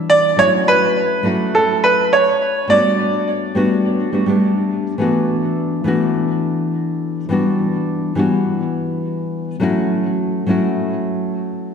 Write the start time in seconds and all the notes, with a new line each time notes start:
Already playing: E3 G3 B3 D4 F#4
0.10 D5
0.37 F#3 A3 C#4 E4 F#4 C#5
0.68 B4
1.23 F#3 A3 C#4 E4 F#4
1.55 A4
1.84 B4
2.13 C#5
2.67 G3 A3 B3 D4 F#4 D5
3.55 G3 A3 B3 D4 F#4
4.12 G3 A3 B3 D4 F#4
4.26 G3 A3 B3 D4 G4
4.98 E3 A3 B3 D4 F#4
5.84 E3 A3 B3 D4 F#4
7.29 E3 G3 B3 D4 F#4
8.15 E3 G3 B3 D4 F#4
9.60 F#3 A3 C#4 E4 F#4
10.46 F#3 A3 C#4 E4 F#4